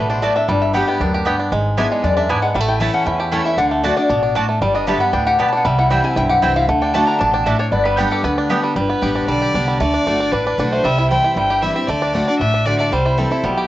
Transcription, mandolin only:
0.22 A3 F#4 D5 A5
0.73 B3 G4 D5 G5
1.25 B3 G4 D5 G5
1.77 B3 E4 D5 G#5
2.29 B3 E4 D5 G#5
2.80 A3 E4 C#5 A5
3.32 A3 E4 C#5 A5
3.84 A3 F#4 D5 A5
4.35 A3 F#4 D5 A5
4.87 B3 G4 D5 A5
5.39 B3 G4 D5 A5
5.90 C4 E4 C5 G5
6.42 C4 E4 C5 G5
6.94 A3 F#4 D5 A5
7.46 A3 F#4 D5 A5
7.97 B3 G4 D5 G5
8.49 B3 G4 D5 G5

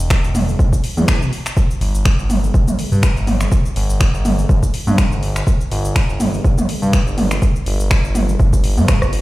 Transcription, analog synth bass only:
Already playing: E1
0.24 E1
0.59 E1
0.97 E2
1.21 B1
1.81 G1
2.19 G1
2.54 G1
2.92 G2
3.16 G1
3.76 G1
4.14 G1
4.49 G1
4.87 G2
5.11 G1
5.71 G1
6.09 G1
6.44 G1
6.82 G2
7.07 G1
7.66 G1
8.04 G1
8.40 G1
8.77 G2
9.01 G1

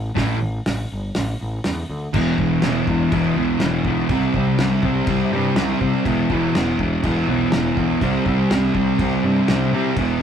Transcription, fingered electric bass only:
0.17 A1
0.41 A1
0.66 A1
0.92 G1
1.16 A1
1.41 A1
1.66 E2
1.89 D2
2.14 E1
2.38 E1
2.63 E1
2.87 E1
3.13 E1
3.36 B1
3.61 E1
3.84 B1
4.09 C2
4.34 C2
4.58 C2
4.83 C2
5.07 C2
5.31 G2
5.55 C2
5.81 C3
6.05 E1
6.30 E1
6.54 E1
6.79 E1
7.04 E1
7.27 B1
7.51 E1
7.77 B1
8.01 C2
8.26 C2
8.50 C2
8.75 C2
9.00 C2
9.23 G2
9.48 C2
9.73 C3
9.97 E1

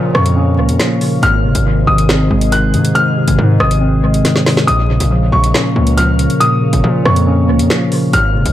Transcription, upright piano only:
0.15 C#6
1.23 F6
1.87 D#6
2.52 F#6
2.95 F6
3.60 D#6
4.67 D#6
5.32 C#6
5.97 F6
6.40 D#6
7.05 C#6
8.13 F6

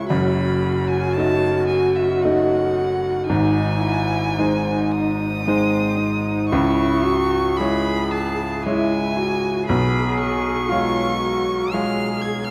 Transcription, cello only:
0.07 F#4
3.27 D#4
3.80 E4
4.36 D#4
5.46 C4
5.97 D#4
6.51 E4
7.04 F#4
7.58 G#4
8.66 E4
9.17 F#4
9.67 G#4
10.69 F4
11.20 F#4
11.71 G#4

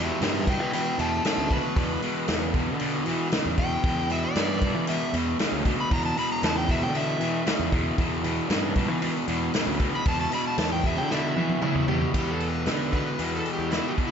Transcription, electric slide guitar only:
Already playing: G4 E5
0.23 G4 E5
0.49 B4 G5
0.74 B4 G5
1.00 E5 A5
1.26 E5 A5
1.52 B4
3.59 G5
4.12 E5
4.24 D5
4.89 E5
5.80 B5
5.93 A#5
6.05 A5
6.19 B5
6.32 A#5
6.45 A5
6.58 G5
6.71 E5
6.83 G5
6.96 E5
9.96 B5
10.08 A5
10.21 A5
10.35 B5
10.47 A5
10.59 A5
10.72 G5
10.86 E5
10.98 G5
11.11 E5
11.61 E4
11.88 G4
12.14 G4
12.31 A4
12.49 B4
12.93 B4
13.36 A4
13.53 G4
13.70 E4
13.88 G4
14.07 E4

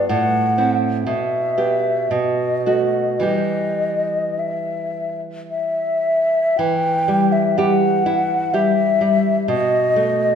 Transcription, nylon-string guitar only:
0.09 A2
0.58 C4 E4
1.07 B2
1.58 B3 G4
2.11 B2
2.66 A3 F#4
3.20 E3 G3 G4
6.59 E3
7.08 G3
7.58 G3 G4
8.06 E4
8.54 G3 G4
9.01 G3
9.48 B2
9.96 A3

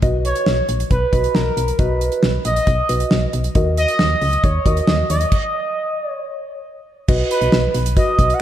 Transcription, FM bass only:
0.03 B1
0.47 B1
0.69 A#1
0.91 B1
1.13 B1
1.35 B1
1.57 B1
1.79 B1
2.23 B1
2.45 A#1
2.67 B1
2.89 B1
3.11 B1
3.34 B1
3.55 D#2
4.00 D#2
4.22 C#2
4.44 D#2
4.66 D#2
4.88 D#2
5.10 D#2
7.08 B1
7.41 B1
7.53 B1
7.74 B1
8.19 B1

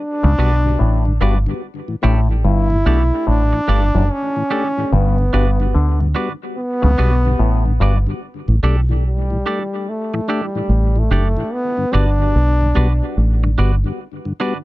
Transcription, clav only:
0.23 C#3
0.38 B2
0.79 A2
1.21 G2
2.03 A2
2.45 G2
2.86 B2
3.27 A2
3.68 G2
3.95 F#2
4.93 G2
5.33 G2
5.75 D3
6.82 C#3
6.98 B2
7.39 A2
7.80 G2

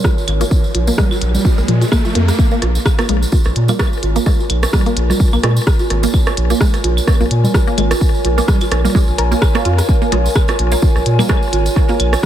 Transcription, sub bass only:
0.28 G#1
0.75 A#1
1.21 A#1
1.58 A#1
1.68 A#2
2.15 F2
2.62 A#1
3.09 A#1
3.46 A#1
3.56 A#2
4.03 G#1
4.50 A#1
4.97 A#1
5.33 A#1
5.44 A#2
5.90 G#1
6.37 A#1
6.84 A#1
7.21 A#1
7.31 A#2
7.78 G#1
8.25 A#1
8.71 A#1
9.08 A#1
9.18 A#1
9.65 F2
10.12 A#1
10.59 A#1
10.96 A#1
11.06 A#2
11.53 G#1
12.00 A#1

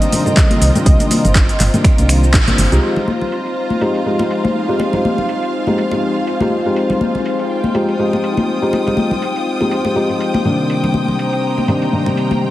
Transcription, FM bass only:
0.62 C2
0.86 C2
1.25 G1
1.60 G1
1.98 C2
2.34 A#1
2.58 G1
2.72 C2

